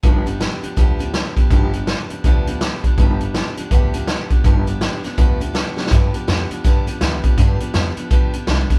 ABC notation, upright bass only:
X:1
M:4/4
L:1/8
Q:"Swing" 1/4=163
K:Gmix
V:1 name="Upright bass" clef=bass
G,,,3 z D,,3 z | G,,,3 z D,,3 z | G,,,3 z D,,3 z | G,,,3 z D,,3 z |
G,, z F,, z3 D,, z | G,, z F,, z D,, z C,, z |]